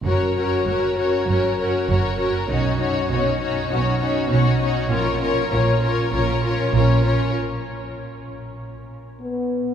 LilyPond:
<<
  \new Staff \with { instrumentName = "Violin section" } { \time 4/4 \key fis \major \tempo 4 = 99 <ais' cis''>8 <ais' cis''>8 <ais' cis''>8 <ais' cis''>8 <ais' cis''>8 <ais' cis''>8 <ais' cis''>8 <ais' cis''>8 | <fis' cis''>8 <fis' cis''>8 <fis' cis''>8 <fis' cis''>8 <fis' cis''>8 <fis' cis''>8 <fis' cis''>8 <fis' cis''>8 | <ais' cis''>8 <ais' cis''>8 <ais' cis''>8 <ais' cis''>8 <ais' cis''>8 <ais' cis''>8 <ais' cis''>8 <ais' cis''>8 | r1 | }
  \new Staff \with { instrumentName = "Viola section" } { \time 4/4 \key fis \major <cis' fis'>8 <cis' fis'>8 <cis' fis'>8 <cis' fis'>8 <cis' fis'>8 <cis' fis'>8 <cis' fis'>8 <cis' fis'>8 | <cis' dis'>8 <cis' dis'>8 <cis' dis'>8 <cis' dis'>8 <cis' dis'>8 <cis' dis'>8 <cis' dis'>8 <cis' dis'>8 | <cis' eis'>8 <cis' eis'>8 <cis' eis'>8 <cis' eis'>8 <cis' eis'>8 <cis' eis'>8 <cis' eis'>8 <cis' eis'>8 | r1 | }
  \new Staff \with { instrumentName = "French horn section" } { \time 4/4 \key fis \major r1 | r1 | r1 | r2. b4 | }
  \new Staff \with { instrumentName = "Cello section" } { \clef bass \time 4/4 \key fis \major fis,4 fis,4 fis,4 fis,4 | b,4 b,4 b,4 b,4 | ais,4 ais,4 ais,4 ais,4 | r1 | }
  \new Staff \with { instrumentName = "Double bass section" } { \clef bass \time 4/4 \key fis \major fis,,4 fis,,4 fis,,4 fis,,4 | b,,4 b,,4 b,,4 b,,4 | ais,,4 ais,,4 ais,,4 ais,,4 | r1 | }
>>